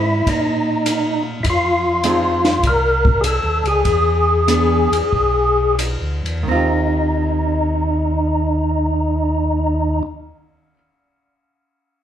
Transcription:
Already playing: G#2 E4
0.27 A#2 D#4, kick, ride
0.86 hi-hat pedal, ride
1.43 F2 E4, kick, ride
1.50 F4
2.03 F3 C4 D#4 G#4, hi-hat pedal, ride
2.45 snare, ride
2.63 C2 A#4, kick, ride
3.05 kick
3.21 G#4, hi-hat pedal, ride
3.25 A4
3.43 D#2
3.64 C#2 G#4, ride
3.85 E2, kick, ride
4.48 E3 B3 D4 G#4, hi-hat pedal, ride
4.92 E2, ride
5.12 B1, kick
5.79 hi-hat pedal, ride
6.01 D2
6.24 E2, ride
6.43 D#2 D#3
6.48 C4 D#4 F4
6.55 G4

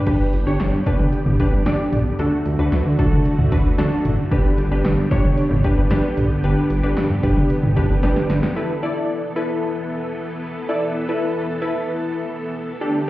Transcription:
0.07 G1 D3 B3 D4 G4 B4, kick, closed hi-hat, crash
0.33 G1, closed hi-hat
0.47 G1 D4 G4 C#5
0.60 G1, snare, closed hi-hat
0.73 G2
0.86 G1 D4 G4 B4, kick, closed hi-hat
0.99 mid tom
1.13 closed hi-hat
1.26 G1, mid tom
1.40 D4 G4 B4, kick, closed hi-hat
1.53 G2
1.66 G1 D4 G4 D5, snare, closed hi-hat
1.92 B1, closed hi-hat, mid tom
2.19 D2 A3 D4 F#4 A4, closed hi-hat
2.46 D2, closed hi-hat
2.59 D2 D4 F#4 B4
2.72 D2, snare, closed hi-hat
2.85 D3
2.99 D2 D4 F#4 A4, kick, closed hi-hat
3.12 mid tom
3.25 closed hi-hat
3.39 D2, mid tom
3.52 D2 D4 F#4 B4, kick, closed hi-hat
3.78 D2 D4 F#4 A4, snare, closed hi-hat
4.05 F#1, closed hi-hat, mid tom
4.31 G1 B3 D4 G4 B4, kick, closed hi-hat
4.58 G1, closed hi-hat
4.71 G1 D4 G4 B4
4.85 G1, snare, closed hi-hat
4.98 G2
5.11 G1 D4 G4 C#5, kick, closed hi-hat
5.24 mid tom
5.38 closed hi-hat
5.51 G1, mid tom
5.64 D4 G4 B4, kick, closed hi-hat
5.78 G2
5.90 G1 D4 G4 B4, snare, closed hi-hat
6.17 B1, closed hi-hat, mid tom
6.44 G1 D4 G4 B4, closed hi-hat
6.70 G1, closed hi-hat
6.83 G1 D4 G4 B4
6.97 G1, snare, closed hi-hat
7.10 G2
7.23 G1 D4 G4 B4, kick, closed hi-hat
7.37 mid tom
7.50 closed hi-hat
7.63 G1, mid tom
7.76 G1 D4 G4 B4, kick, closed hi-hat
7.90 mid tom
8.03 G1 D4 G4 B4, snare, closed hi-hat
8.16 snare
8.30 G1, snare, closed hi-hat
8.43 snare
8.56 E3 B3 E4 A4 B4
8.83 E4 A4 D5
9.36 E4 A4 B4
10.69 E4 A4 D5
11.09 E4 A4 B4
11.62 E4 A4 B4
12.81 D3 A3 D4 G4 A4

